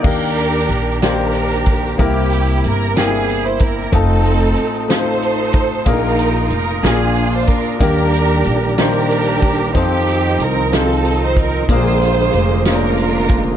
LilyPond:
<<
  \new Staff \with { instrumentName = "String section" } { \time 6/8 \key ees \major \tempo 4. = 62 << { bes'4. bes'4. | g'4 bes'8 aes'8. c''16 bes'8 | a'4. c''4. | bes'4 bes'8 aes'8. c''16 bes'8 |
bes'4. bes'4. | g'4 bes'8 a'8. c''16 bes'8 | c''4. bes'4. | } \\ { <d' g'>4. <d' g'>4. | <bes e'>4. e'4. | <c' ees'>4. <ees' a'>4. | <ees' f'>4. <d' f'>4. |
<d' g'>4. <d' g'>4. | <c' ees'>4. <c' ees'>4. | <f' aes'>4. <d' f'>4. | } >> }
  \new Staff \with { instrumentName = "Grand piano" } { \time 6/8 \key ees \major <ees bes d' g' bes'>4. <ees bes d' g' c''>4. | <c bes c' e' g' bes'>4. <bes c' d' e' bes' g''>4. | <a c' ees' f' a'>4. <a c' ees' f' c''>4. | <bes, bes d' ees' f' aes' bes'>4. <bes, bes des' d' f' aes' bes'>4. |
<ees bes d' g' bes'>4. <ees bes d' g' c''>4. | <c' ees' f' a' c''>4. <c' ees' f' aes' a' c''>4. | <bes, bes d' f' aes' bes'>4. <bes des' d' f' aes' c''>4. | }
  \new Staff \with { instrumentName = "Tonewheel organ" } { \time 6/8 \key ees \major r2. | r2. | r2. | r2. |
<ees g bes d' ges' g'>2. | <ees f c' f'>2. | <d f aes bes f'>2. | }
  \new Staff \with { instrumentName = "Upright bass" } { \clef bass \time 6/8 \key ees \major ees,4 bes,,2 | c,4 g,,2 | f,,4 r2 | bes,,4 f,,8 bes,,4 r8 |
ees,4 bes,,2 | f,4 c,2 | bes,,4 f,,2 | }
  \new DrumStaff \with { instrumentName = "Drums" } \drummode { \time 6/8 <cymc bd>8 hh8 hh8 <hh sn>8 hh8 <hh bd>8 | <hh bd>8 hh8 hh8 <hh sn>8 hh8 <hh bd>8 | <hh bd>8 hh8 hh8 <hh sn>8 hh8 <hh bd>8 | <hh bd>8 hh8 hh8 <hh sn>8 hh8 <hh bd>8 |
<hh bd>8 hh8 hh8 <hh sn>8 hh8 <hh bd>8 | <hh bd>8 hh8 hh8 <hh sn>8 hh8 <hh bd>8 | <hh bd>8 hh8 hh8 <hh sn>8 hh8 <hh bd>8 | }
>>